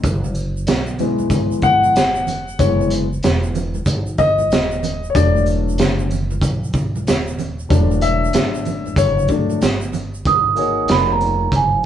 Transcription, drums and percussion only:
0.04 kick, closed hi-hat, shaker
0.24 high conga, shaker
0.35 shaker
0.57 shaker
0.67 snare, closed hi-hat, low conga, shaker
0.86 shaker
0.99 low conga, shaker
1.19 high conga, shaker
1.30 kick, closed hi-hat, shaker
1.51 shaker
1.62 kick, shaker
1.83 high conga, shaker
1.96 snare, closed hi-hat, shaker
2.15 shaker
2.27 closed hi-hat, low conga, shaker
2.48 shaker
2.59 kick, closed hi-hat, shaker
2.81 high conga, shaker
2.90 closed hi-hat, shaker
2.92 shaker
3.13 shaker
3.23 snare, closed hi-hat, low conga, shaker
3.43 shaker
3.55 low conga, shaker
3.74 high conga, shaker
3.86 kick, closed hi-hat, shaker
4.07 shaker
4.18 kick, shaker
4.39 high conga, shaker
4.51 snare, closed hi-hat, shaker
4.71 shaker
4.83 closed hi-hat, low conga, shaker
5.04 shaker
5.15 kick, closed hi-hat, shaker
5.36 high conga, shaker
5.46 shaker
5.69 shaker
5.78 snare, closed hi-hat, low conga, shaker
5.99 shaker
6.10 low conga, shaker
6.12 shaker
6.31 high conga, shaker
6.42 kick, closed hi-hat, shaker
6.64 shaker
6.73 kick, shaker
6.75 shaker
6.96 high conga, shaker
7.07 snare, closed hi-hat, shaker
7.27 shaker
7.39 low conga, shaker
7.59 shaker
7.70 kick, closed hi-hat, shaker
7.91 high conga, shaker
8.01 closed hi-hat, high conga, shaker
8.03 shaker
8.24 shaker
8.33 snare, closed hi-hat, low conga, shaker
8.54 shaker
8.65 low conga, shaker
8.86 high conga, shaker
8.96 kick, closed hi-hat, shaker
9.19 shaker
9.28 kick, shaker
9.30 shaker
9.50 high conga, shaker
9.62 snare, closed hi-hat, shaker
9.81 shaker
9.93 low conga, shaker
10.14 shaker
10.25 kick, closed hi-hat
10.56 shaker
10.88 snare, closed hi-hat
11.21 shaker
11.52 kick, closed hi-hat

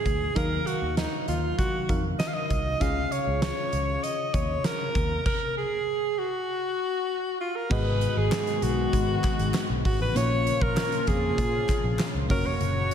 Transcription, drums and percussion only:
0.06 kick, closed hi-hat
0.36 kick, closed hi-hat
0.67 closed hi-hat
0.97 snare, closed hi-hat
1.28 closed hi-hat
1.59 kick, closed hi-hat
1.89 kick, closed hi-hat
2.20 snare, closed hi-hat
2.50 kick, closed hi-hat
2.81 kick, closed hi-hat
3.12 closed hi-hat
3.42 snare, closed hi-hat
3.73 closed hi-hat
4.04 closed hi-hat
4.34 kick, closed hi-hat
4.64 snare, closed hi-hat
4.95 kick, closed hi-hat
5.26 kick, crash
7.71 kick, crash
8.01 closed hi-hat
8.32 snare, clap, closed hi-hat
8.47 closed hi-hat
8.62 closed hi-hat
8.93 kick, closed hi-hat
9.24 kick, clap, closed hi-hat
9.39 closed hi-hat
9.54 snare, clap, closed hi-hat
9.85 kick, open hi-hat
10.16 closed hi-hat
10.47 closed hi-hat
10.61 kick
10.77 snare, clap, closed hi-hat
10.92 closed hi-hat
11.07 kick, closed hi-hat
11.38 kick, closed hi-hat
11.69 kick, clap, closed hi-hat
11.99 snare, clap, closed hi-hat
12.30 kick, open hi-hat
12.61 closed hi-hat

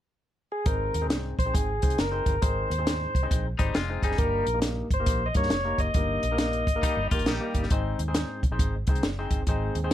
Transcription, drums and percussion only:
0.66 kick, closed hi-hat
0.94 closed hi-hat
1.10 snare, closed hi-hat
1.39 kick, closed hi-hat
1.55 kick, closed hi-hat
1.82 kick, closed hi-hat
1.90 closed hi-hat
1.98 snare, closed hi-hat
2.26 kick, closed hi-hat
2.42 kick, closed hi-hat
2.71 closed hi-hat
2.87 snare, closed hi-hat
3.15 kick, closed hi-hat
3.31 kick, closed hi-hat
3.59 kick, closed hi-hat
3.75 snare, closed hi-hat
4.03 kick, closed hi-hat
4.12 snare
4.18 kick, closed hi-hat
4.47 closed hi-hat
4.62 snare, closed hi-hat
4.91 kick, closed hi-hat
5.06 kick, closed hi-hat
5.34 kick, closed hi-hat
5.43 snare
5.50 snare, closed hi-hat
5.78 kick, closed hi-hat
5.94 kick, closed hi-hat
6.23 closed hi-hat
6.38 snare, closed hi-hat
6.53 closed hi-hat
6.67 kick, closed hi-hat
6.83 kick, closed hi-hat
7.11 kick, closed hi-hat
7.19 closed hi-hat
7.26 snare, closed hi-hat
7.54 kick, closed hi-hat
7.63 snare
7.70 kick, closed hi-hat
7.99 closed hi-hat
8.14 snare, closed hi-hat
8.43 kick, closed hi-hat
8.59 kick, closed hi-hat
8.87 kick, closed hi-hat
8.95 closed hi-hat
9.03 snare, closed hi-hat
9.31 kick, closed hi-hat
9.47 kick, closed hi-hat
9.75 closed hi-hat

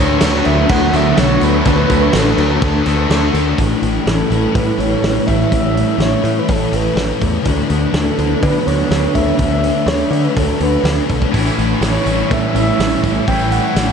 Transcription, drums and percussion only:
0.21 snare, tambourine, crash
0.33 snare
0.45 crash
0.69 kick, tambourine, crash
0.93 tambourine, crash
1.17 snare, tambourine, crash
1.41 tambourine, crash
1.65 kick, tambourine, crash
1.90 kick, tambourine, crash
2.13 snare, tambourine, crash
2.38 tambourine, crash
2.62 kick, tambourine, crash
2.86 snare, tambourine, crash
3.11 snare, tambourine, crash
3.35 tambourine, crash
3.58 kick, open hi-hat
3.83 open hi-hat
4.07 snare, open hi-hat
4.32 open hi-hat
4.55 kick, open hi-hat
4.80 open hi-hat
5.04 snare, open hi-hat
5.28 kick, open hi-hat
5.52 kick, open hi-hat
5.77 open hi-hat
6.00 snare, open hi-hat
6.25 open hi-hat
6.48 kick, open hi-hat
6.73 open hi-hat
6.97 snare, open hi-hat
7.21 kick, open hi-hat
7.45 kick, open hi-hat
7.70 open hi-hat
7.94 snare, open hi-hat
8.19 open hi-hat
8.43 kick, open hi-hat
8.68 open hi-hat
8.91 snare, open hi-hat
9.15 kick, open hi-hat
9.39 kick, open hi-hat
9.64 open hi-hat
9.88 snare, open hi-hat
10.13 open hi-hat
10.37 kick, open hi-hat
10.61 open hi-hat
10.85 snare, open hi-hat
11.10 kick, open hi-hat
11.22 kick
11.34 kick, open hi-hat
11.47 tambourine
11.59 open hi-hat, tambourine
11.82 snare, open hi-hat, tambourine
12.06 open hi-hat, tambourine
12.19 tambourine
12.31 kick, open hi-hat, tambourine
12.56 open hi-hat, tambourine
12.80 snare, open hi-hat, tambourine
13.04 kick, open hi-hat, tambourine
13.28 kick, open hi-hat
13.39 tambourine
13.52 open hi-hat, tambourine
13.76 snare, open hi-hat, tambourine

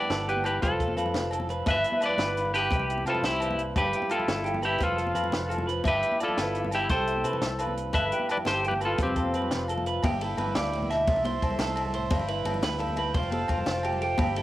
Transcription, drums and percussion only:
0.02 low conga
0.10 snare, closed hi-hat, muted conga
0.28 closed hi-hat
0.36 high conga
0.44 closed hi-hat, low conga, low agogo
0.54 low conga
0.62 kick, closed hi-hat, muted conga
0.70 low conga
0.80 kick, closed hi-hat
0.88 high conga
0.97 closed hi-hat, low agogo
1.06 low conga
1.14 snare, closed hi-hat, muted conga
1.31 closed hi-hat, low conga, low agogo
1.40 high conga, low conga
1.49 closed hi-hat, low conga
1.66 kick, closed hi-hat, muted conga, low agogo
1.75 low conga
1.84 closed hi-hat
1.92 high conga, low conga
2.01 closed hi-hat, low agogo
2.09 low conga
2.18 snare, closed hi-hat, muted conga
2.37 closed hi-hat
2.45 low conga
2.54 snare, closed hi-hat, low agogo
2.71 kick, closed hi-hat, muted conga
2.79 low conga
2.90 closed hi-hat
2.98 high conga
3.06 closed hi-hat, low agogo
3.15 low conga
3.24 snare, closed hi-hat, muted conga
3.40 closed hi-hat, low conga, low agogo
3.51 high conga, low conga
3.59 closed hi-hat
3.76 kick, closed hi-hat, muted conga, low agogo
3.85 low conga
3.93 closed hi-hat
4.02 high conga, low conga
4.10 closed hi-hat, low agogo
4.20 low conga
4.28 snare, closed hi-hat, muted conga
4.46 closed hi-hat
4.54 high conga, low conga
4.62 closed hi-hat, low agogo
4.80 kick, closed hi-hat, muted conga
4.89 low conga
4.98 closed hi-hat
5.07 high conga
5.15 closed hi-hat, low agogo
5.24 low conga
5.32 snare, closed hi-hat, muted conga
5.49 closed hi-hat, low conga, low agogo
5.58 high conga, low conga
5.69 closed hi-hat
5.84 kick, closed hi-hat, muted conga, low agogo
5.93 low conga
6.03 closed hi-hat
6.12 high conga, low conga
6.20 closed hi-hat, low agogo
6.29 low conga
6.37 snare, closed hi-hat, muted conga
6.55 closed hi-hat
6.64 high conga, low conga
6.71 snare, closed hi-hat, low agogo
6.89 kick, closed hi-hat, muted conga
6.99 low conga
7.07 closed hi-hat
7.16 high conga
7.24 closed hi-hat, low agogo
7.33 low conga
7.42 snare, closed hi-hat, muted conga
7.59 closed hi-hat, low conga, low agogo
7.67 high conga, low conga
7.77 closed hi-hat
7.93 kick, closed hi-hat, muted conga, low agogo
8.02 low conga
8.12 closed hi-hat
8.20 high conga, low conga
8.29 closed hi-hat, low agogo
8.37 low conga
8.45 snare, closed hi-hat, muted conga, low conga
8.63 closed hi-hat, low conga
8.71 high conga, low conga
8.81 closed hi-hat, low agogo
8.98 kick, closed hi-hat, muted conga
9.07 low conga
9.16 kick, closed hi-hat
9.25 high conga
9.34 closed hi-hat, low agogo
9.42 low conga
9.51 snare, closed hi-hat, muted conga
9.68 closed hi-hat, low agogo
9.78 high conga, low conga
9.86 closed hi-hat
9.96 low conga
10.03 kick, ride, muted conga, high conga, low agogo
10.13 low conga
10.21 ride
10.31 low conga
10.37 ride, high conga, low agogo
10.48 low conga
10.55 snare, ride, muted conga
10.73 ride, low conga
10.82 high conga, low conga
10.91 snare, ride, low agogo
11.08 kick, ride, muted conga
11.16 low conga
11.25 ride, high conga
11.42 kick, ride, low agogo
11.51 low conga
11.59 snare, ride, muted conga
11.68 high conga
11.76 ride, low agogo
11.85 low conga
11.94 ride, low conga
12.10 kick, ride, muted conga, high conga, low agogo
12.19 low conga
12.28 ride
12.37 low conga
12.45 ride, high conga, low agogo
12.54 low conga
12.63 snare, ride, muted conga
12.80 ride, low conga
12.88 high conga, low conga
12.97 ride, low agogo
13.14 kick, ride, muted conga
13.23 low conga
13.32 ride, high conga
13.48 kick, ride, low agogo
13.58 low conga
13.66 snare, ride, muted conga
13.83 ride, low agogo
13.93 low conga
14.01 ride, low conga
14.18 kick, ride, muted conga, high conga, low agogo
14.27 low conga
14.36 ride

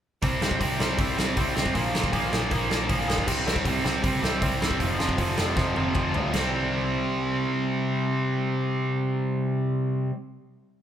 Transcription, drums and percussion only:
0.22 kick, open hi-hat
0.42 snare
0.51 kick
0.61 kick, open hi-hat
0.80 snare
0.98 kick, open hi-hat
1.19 snare
1.37 kick, open hi-hat
1.57 snare
1.66 kick
1.75 kick, open hi-hat
1.95 snare
2.04 kick
2.13 kick, open hi-hat
2.33 snare
2.51 kick, open hi-hat
2.71 snare
2.89 kick, open hi-hat
3.10 snare
3.18 kick
3.28 kick, crash
3.48 snare
3.56 kick
3.65 kick, open hi-hat
3.86 snare
4.04 kick, open hi-hat
4.24 snare
4.42 kick, open hi-hat
4.62 snare
4.71 kick
4.80 kick, open hi-hat
5.00 snare
5.09 kick
5.18 kick, open hi-hat
5.38 snare
5.57 kick, snare
5.76 high tom
5.95 kick, mid tom
6.14 floor tom
6.33 snare, china

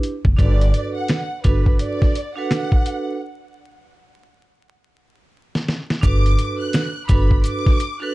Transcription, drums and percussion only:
0.03 closed hi-hat
0.25 kick
0.39 kick, closed hi-hat
0.61 closed hi-hat
0.74 closed hi-hat
1.08 snare, closed hi-hat
1.44 kick, closed hi-hat
1.66 kick
1.79 closed hi-hat
2.02 kick, snare
2.15 closed hi-hat
2.51 snare, closed hi-hat
2.72 kick
2.86 closed hi-hat
5.55 snare
5.68 snare
5.90 snare
6.03 kick, closed hi-hat, maracas
6.26 closed hi-hat
6.38 closed hi-hat, maracas
6.73 snare, closed hi-hat, maracas
7.09 kick, closed hi-hat, maracas
7.31 kick
7.44 closed hi-hat, maracas
7.66 kick, snare
7.80 closed hi-hat, maracas

